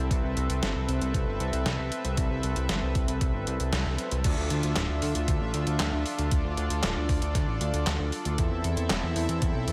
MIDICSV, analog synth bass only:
0, 0, Header, 1, 2, 480
1, 0, Start_track
1, 0, Tempo, 517241
1, 99, Time_signature, 4, 2, 24, 8
1, 9025, End_track
2, 0, Start_track
2, 0, Title_t, "Analog synth bass"
2, 0, Program_c, 0, 38
2, 100, Note_on_c, 0, 36, 106
2, 210, Note_off_c, 0, 36, 0
2, 220, Note_on_c, 0, 36, 75
2, 330, Note_off_c, 0, 36, 0
2, 340, Note_on_c, 0, 36, 96
2, 450, Note_off_c, 0, 36, 0
2, 460, Note_on_c, 0, 36, 78
2, 570, Note_off_c, 0, 36, 0
2, 580, Note_on_c, 0, 31, 101
2, 690, Note_off_c, 0, 31, 0
2, 699, Note_on_c, 0, 36, 71
2, 810, Note_off_c, 0, 36, 0
2, 819, Note_on_c, 0, 36, 97
2, 929, Note_off_c, 0, 36, 0
2, 939, Note_on_c, 0, 36, 80
2, 1049, Note_off_c, 0, 36, 0
2, 1060, Note_on_c, 0, 36, 101
2, 1170, Note_off_c, 0, 36, 0
2, 1179, Note_on_c, 0, 31, 75
2, 1290, Note_off_c, 0, 31, 0
2, 1300, Note_on_c, 0, 36, 90
2, 1410, Note_off_c, 0, 36, 0
2, 1420, Note_on_c, 0, 36, 76
2, 1530, Note_off_c, 0, 36, 0
2, 1539, Note_on_c, 0, 36, 101
2, 1650, Note_off_c, 0, 36, 0
2, 1659, Note_on_c, 0, 36, 77
2, 1770, Note_off_c, 0, 36, 0
2, 1899, Note_on_c, 0, 36, 78
2, 2009, Note_off_c, 0, 36, 0
2, 2020, Note_on_c, 0, 36, 101
2, 2130, Note_off_c, 0, 36, 0
2, 2139, Note_on_c, 0, 36, 73
2, 2249, Note_off_c, 0, 36, 0
2, 2258, Note_on_c, 0, 36, 95
2, 2369, Note_off_c, 0, 36, 0
2, 2378, Note_on_c, 0, 36, 81
2, 2489, Note_off_c, 0, 36, 0
2, 2497, Note_on_c, 0, 31, 100
2, 2609, Note_off_c, 0, 31, 0
2, 2618, Note_on_c, 0, 36, 73
2, 2729, Note_off_c, 0, 36, 0
2, 2739, Note_on_c, 0, 36, 95
2, 2850, Note_off_c, 0, 36, 0
2, 2859, Note_on_c, 0, 36, 79
2, 2969, Note_off_c, 0, 36, 0
2, 2980, Note_on_c, 0, 36, 105
2, 3090, Note_off_c, 0, 36, 0
2, 3099, Note_on_c, 0, 31, 76
2, 3209, Note_off_c, 0, 31, 0
2, 3220, Note_on_c, 0, 36, 89
2, 3330, Note_off_c, 0, 36, 0
2, 3339, Note_on_c, 0, 36, 78
2, 3450, Note_off_c, 0, 36, 0
2, 3459, Note_on_c, 0, 36, 102
2, 3569, Note_off_c, 0, 36, 0
2, 3579, Note_on_c, 0, 36, 74
2, 3690, Note_off_c, 0, 36, 0
2, 3819, Note_on_c, 0, 36, 83
2, 3930, Note_off_c, 0, 36, 0
2, 3941, Note_on_c, 0, 38, 102
2, 4050, Note_off_c, 0, 38, 0
2, 4060, Note_on_c, 0, 38, 79
2, 4170, Note_off_c, 0, 38, 0
2, 4180, Note_on_c, 0, 38, 96
2, 4290, Note_off_c, 0, 38, 0
2, 4301, Note_on_c, 0, 38, 83
2, 4410, Note_off_c, 0, 38, 0
2, 4420, Note_on_c, 0, 26, 107
2, 4530, Note_off_c, 0, 26, 0
2, 4540, Note_on_c, 0, 38, 77
2, 4650, Note_off_c, 0, 38, 0
2, 4661, Note_on_c, 0, 38, 93
2, 4771, Note_off_c, 0, 38, 0
2, 4780, Note_on_c, 0, 38, 80
2, 4890, Note_off_c, 0, 38, 0
2, 4901, Note_on_c, 0, 38, 104
2, 5010, Note_off_c, 0, 38, 0
2, 5020, Note_on_c, 0, 33, 80
2, 5130, Note_off_c, 0, 33, 0
2, 5140, Note_on_c, 0, 38, 92
2, 5250, Note_off_c, 0, 38, 0
2, 5261, Note_on_c, 0, 38, 78
2, 5370, Note_off_c, 0, 38, 0
2, 5381, Note_on_c, 0, 38, 105
2, 5491, Note_off_c, 0, 38, 0
2, 5500, Note_on_c, 0, 38, 75
2, 5610, Note_off_c, 0, 38, 0
2, 5740, Note_on_c, 0, 38, 83
2, 5850, Note_off_c, 0, 38, 0
2, 5861, Note_on_c, 0, 38, 100
2, 5971, Note_off_c, 0, 38, 0
2, 5980, Note_on_c, 0, 38, 73
2, 6090, Note_off_c, 0, 38, 0
2, 6099, Note_on_c, 0, 38, 95
2, 6209, Note_off_c, 0, 38, 0
2, 6219, Note_on_c, 0, 38, 82
2, 6329, Note_off_c, 0, 38, 0
2, 6340, Note_on_c, 0, 26, 102
2, 6450, Note_off_c, 0, 26, 0
2, 6461, Note_on_c, 0, 38, 76
2, 6571, Note_off_c, 0, 38, 0
2, 6580, Note_on_c, 0, 38, 95
2, 6690, Note_off_c, 0, 38, 0
2, 6700, Note_on_c, 0, 38, 84
2, 6810, Note_off_c, 0, 38, 0
2, 6821, Note_on_c, 0, 38, 103
2, 6930, Note_off_c, 0, 38, 0
2, 6940, Note_on_c, 0, 33, 78
2, 7050, Note_off_c, 0, 33, 0
2, 7059, Note_on_c, 0, 38, 96
2, 7169, Note_off_c, 0, 38, 0
2, 7179, Note_on_c, 0, 38, 84
2, 7289, Note_off_c, 0, 38, 0
2, 7299, Note_on_c, 0, 38, 102
2, 7409, Note_off_c, 0, 38, 0
2, 7419, Note_on_c, 0, 38, 78
2, 7530, Note_off_c, 0, 38, 0
2, 7659, Note_on_c, 0, 38, 84
2, 7769, Note_off_c, 0, 38, 0
2, 7780, Note_on_c, 0, 40, 105
2, 7890, Note_off_c, 0, 40, 0
2, 7900, Note_on_c, 0, 40, 75
2, 8010, Note_off_c, 0, 40, 0
2, 8020, Note_on_c, 0, 40, 93
2, 8130, Note_off_c, 0, 40, 0
2, 8139, Note_on_c, 0, 40, 82
2, 8250, Note_off_c, 0, 40, 0
2, 8260, Note_on_c, 0, 28, 105
2, 8370, Note_off_c, 0, 28, 0
2, 8379, Note_on_c, 0, 40, 78
2, 8490, Note_off_c, 0, 40, 0
2, 8499, Note_on_c, 0, 40, 98
2, 8609, Note_off_c, 0, 40, 0
2, 8618, Note_on_c, 0, 40, 82
2, 8729, Note_off_c, 0, 40, 0
2, 8741, Note_on_c, 0, 40, 101
2, 8850, Note_off_c, 0, 40, 0
2, 8858, Note_on_c, 0, 35, 76
2, 8969, Note_off_c, 0, 35, 0
2, 8979, Note_on_c, 0, 40, 92
2, 9025, Note_off_c, 0, 40, 0
2, 9025, End_track
0, 0, End_of_file